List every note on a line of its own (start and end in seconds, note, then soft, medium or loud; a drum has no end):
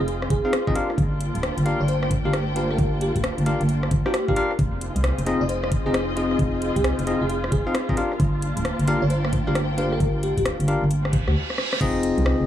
0.00 0.27 F1 medium
0.00 0.72 C4 medium
0.00 0.72 D#4 medium
0.00 4.58 F4 medium
0.00 0.72 G#4 medium
0.00 0.05 G#4 medium
0.00 0.76 D#5 medium
0.00 0.72 G5 medium
0.08 0.17 G#4 medium
0.08 closed hi-hat medium
0.22 cross-stick medium
0.30 0.41 F1 loud
0.30 0.76 G#4 medium
0.30 kick loud
0.30 closed hi-hat loud
0.45 0.53 C4 loud
0.45 0.53 D#4 medium
0.45 0.53 F4 medium
0.45 0.53 G#4 medium
0.45 0.53 F5 loud
0.53 cross-stick loud
0.53 closed hi-hat medium
0.67 0.74 C4 loud
0.67 0.74 D#4 medium
0.67 0.74 F4 medium
0.67 0.74 G#4 medium
0.67 0.74 D#5 loud
0.67 kick loud
0.75 4.55 A#3 medium
0.75 4.55 D4 medium
0.75 0.90 D4 loud
0.75 4.55 F4 medium
0.75 0.90 F4 medium
0.75 0.90 G4 medium
0.75 0.90 A#4 medium
0.75 0.90 F5 loud
0.75 4.55 A5 medium
0.75 closed hi-hat loud
0.90 5.87 A#3 medium
0.90 4.59 G5 medium
0.90 cross-stick soft
0.98 1.30 G1 loud
0.98 kick loud
0.98 closed hi-hat medium
1.21 closed hi-hat loud
1.35 1.51 D1 loud
1.35 closed hi-hat medium
1.43 cross-stick loud
1.43 closed hi-hat medium
1.58 1.73 G1 medium
1.58 closed hi-hat medium
1.66 1.80 D4 medium
1.66 1.80 F4 medium
1.66 1.80 G4 medium
1.66 1.80 A#4 medium
1.66 1.80 F5 loud
1.66 closed hi-hat loud
1.80 2.20 G1 medium
1.80 1.87 D5 medium
1.88 1.98 C5 medium
1.88 closed hi-hat medium
2.03 2.08 C5 medium
2.03 cross-stick medium
2.11 kick loud
2.11 closed hi-hat loud
2.25 2.75 G1 medium
2.25 2.34 D4 medium
2.25 2.34 F4 medium
2.25 2.34 G4 medium
2.25 2.31 G4 medium
2.25 2.34 A#4 medium
2.25 2.34 F5 loud
2.33 2.43 G4 medium
2.33 cross-stick loud
2.33 closed hi-hat medium
2.56 3.44 D4 medium
2.56 3.44 F4 medium
2.56 3.44 G4 medium
2.56 3.44 A#4 medium
2.56 2.68 C5 medium
2.56 3.44 F5 medium
2.56 closed hi-hat loud
2.71 2.89 A#4 medium
2.71 cross-stick soft
2.78 3.10 G1 medium
2.78 kick loud
2.78 closed hi-hat medium
3.01 3.11 G4 medium
3.01 closed hi-hat loud
3.16 3.31 D1 loud
3.16 3.21 G4 medium
3.16 kick medium
3.16 closed hi-hat medium
3.24 cross-stick loud
3.24 closed hi-hat medium
3.38 3.54 G1 loud
3.38 closed hi-hat medium
3.46 3.61 D4 medium
3.46 3.61 F4 medium
3.46 3.61 G4 medium
3.46 3.61 A#4 medium
3.46 3.61 F5 medium
3.46 closed hi-hat loud
3.61 3.88 G1 medium
3.61 closed hi-hat medium
3.69 closed hi-hat medium
3.83 cross-stick medium
3.91 4.02 G1 medium
3.91 kick loud
3.91 closed hi-hat loud
4.06 4.14 D4 medium
4.06 4.14 F4 medium
4.06 4.14 G4 medium
4.06 4.12 G4 medium
4.06 4.14 A#4 medium
4.06 4.14 G5 loud
4.06 cross-stick medium
4.14 4.26 G4 medium
4.14 cross-stick loud
4.14 closed hi-hat medium
4.28 4.35 D4 medium
4.28 4.35 F4 medium
4.28 4.34 G4 medium
4.28 4.35 G4 medium
4.28 4.35 A#4 medium
4.28 4.35 F5 loud
4.28 kick loud
4.36 4.51 D4 medium
4.36 4.51 F4 medium
4.36 4.51 G4 medium
4.36 4.46 G4 medium
4.36 4.51 A#4 medium
4.36 4.51 F5 loud
4.36 closed hi-hat loud
4.51 cross-stick soft
4.59 4.90 F1 medium
4.59 7.94 C4 medium
4.59 7.94 D#4 medium
4.59 11.36 F4 medium
4.59 7.94 G#4 medium
4.59 7.94 G5 medium
4.59 kick loud
4.59 closed hi-hat medium
4.81 closed hi-hat loud
4.89 7.97 D#5 medium
4.96 5.12 C2 loud
4.96 closed hi-hat medium
5.04 cross-stick loud
5.04 closed hi-hat medium
5.18 5.34 F1 loud
5.18 closed hi-hat medium
5.26 5.41 C4 loud
5.26 5.41 D#4 medium
5.26 5.41 F4 medium
5.26 5.41 G#4 medium
5.26 5.41 D#5 loud
5.26 closed hi-hat loud
5.41 5.81 F1 medium
5.41 5.48 D#5 medium
5.49 5.58 C5 medium
5.49 closed hi-hat medium
5.63 5.69 C5 medium
5.63 cross-stick medium
5.72 kick loud
5.72 closed hi-hat loud
5.86 6.36 F1 medium
5.86 5.95 C4 medium
5.86 5.95 D#4 medium
5.86 5.95 F4 medium
5.86 5.91 G#4 medium
5.86 5.95 G#4 medium
5.86 5.95 D#5 medium
5.94 6.03 G#4 medium
5.94 cross-stick loud
5.94 closed hi-hat medium
6.17 7.05 C4 medium
6.17 7.05 D#4 medium
6.17 7.05 F4 medium
6.17 7.05 G#4 medium
6.17 7.05 D#5 medium
6.17 closed hi-hat loud
6.31 cross-stick soft
6.39 6.71 F1 loud
6.39 kick loud
6.39 closed hi-hat medium
6.62 closed hi-hat loud
6.76 6.92 C2 loud
6.76 6.95 G#4 medium
6.76 kick medium
6.76 closed hi-hat medium
6.84 cross-stick loud
6.84 closed hi-hat medium
6.99 7.15 F1 medium
6.99 closed hi-hat medium
7.07 7.22 C4 medium
7.07 7.22 D#4 medium
7.07 7.22 F4 medium
7.07 7.22 G#4 medium
7.07 7.22 D#5 medium
7.07 closed hi-hat loud
7.21 7.49 F1 medium
7.21 7.27 G#4 medium
7.29 7.39 G#4 medium
7.29 closed hi-hat medium
7.44 cross-stick medium
7.52 7.63 F1 loud
7.52 7.97 G#4 medium
7.52 kick loud
7.52 closed hi-hat loud
7.67 7.75 C4 medium
7.67 7.75 D#4 medium
7.67 7.75 F4 medium
7.67 7.75 G#4 medium
7.67 7.75 F5 loud
7.75 cross-stick loud
7.75 closed hi-hat medium
7.89 7.96 C4 loud
7.89 7.96 D#4 medium
7.89 7.96 F4 medium
7.89 7.96 G#4 medium
7.89 7.96 D#5 loud
7.89 kick loud
7.97 11.32 A#3 medium
7.97 11.32 D4 medium
7.97 8.12 D4 loud
7.97 11.32 F4 medium
7.97 8.12 F4 medium
7.97 8.12 G4 medium
7.97 8.12 A#4 medium
7.97 8.12 F5 loud
7.97 11.32 A5 medium
7.97 closed hi-hat loud
8.12 cross-stick soft
8.18 8.51 G1 loud
8.18 11.36 A#3 loud
8.18 kick loud
8.18 closed hi-hat medium
8.42 closed hi-hat loud
8.57 8.73 D1 loud
8.57 11.36 G5 medium
8.57 closed hi-hat medium
8.65 cross-stick loud
8.65 closed hi-hat medium
8.79 8.95 G1 loud
8.79 closed hi-hat medium
8.88 9.02 D4 loud
8.88 9.02 F4 medium
8.88 9.02 G4 medium
8.88 9.02 A#4 medium
8.88 9.02 F5 loud
8.88 closed hi-hat loud
9.02 9.42 G1 medium
9.02 9.09 D5 medium
9.10 9.19 C5 medium
9.10 closed hi-hat medium
9.24 9.30 C5 medium
9.24 cross-stick medium
9.33 kick loud
9.33 closed hi-hat loud
9.47 9.97 G1 medium
9.47 9.56 D4 medium
9.47 9.56 F4 medium
9.47 9.56 G4 medium
9.47 9.52 G4 medium
9.47 9.56 A#4 medium
9.47 9.56 F5 loud
9.55 9.65 G4 medium
9.55 cross-stick loud
9.55 closed hi-hat medium
9.78 10.66 D4 medium
9.78 10.66 F4 medium
9.78 10.66 G4 medium
9.78 10.66 A#4 medium
9.78 9.89 C5 medium
9.78 10.66 F5 medium
9.78 closed hi-hat loud
9.92 10.11 A#4 medium
9.92 cross-stick soft
10.00 10.32 G1 medium
10.00 kick loud
10.00 closed hi-hat medium
10.23 10.32 G4 medium
10.23 closed hi-hat loud
10.37 10.53 D1 loud
10.37 10.43 G4 medium
10.37 kick medium
10.37 closed hi-hat medium
10.45 cross-stick loud
10.45 closed hi-hat medium
10.60 10.76 G1 loud
10.60 closed hi-hat medium
10.68 10.83 D4 medium
10.68 10.83 F4 medium
10.68 10.83 G4 medium
10.68 10.83 A#4 medium
10.68 10.83 F5 medium
10.68 closed hi-hat loud
10.82 11.15 G1 medium
10.91 closed hi-hat medium
10.91 reverse cymbal medium
11.05 cross-stick medium
11.13 11.24 F1 loud
11.13 kick loud
11.13 closed hi-hat loud
11.28 11.36 D2 loud
11.28 11.34 G4 medium
11.28 cross-stick medium
11.50 cross-stick medium
11.58 cross-stick medium
11.73 cross-stick medium
11.81 12.12 F1 medium
11.81 12.45 C4 loud
11.81 12.47 C4 medium
11.81 12.47 D#4 medium
11.81 12.45 D#4 medium
11.81 12.45 F4 loud
11.81 12.45 G#4 medium
11.81 12.47 G#4 medium
11.81 12.45 D#5 loud
11.81 12.47 G5 medium
11.81 kick loud
11.81 closed hi-hat medium
11.81 crash loud
12.03 closed hi-hat loud
12.18 12.33 C2 loud
12.18 closed hi-hat soft
12.26 cross-stick loud
12.40 12.47 F1 loud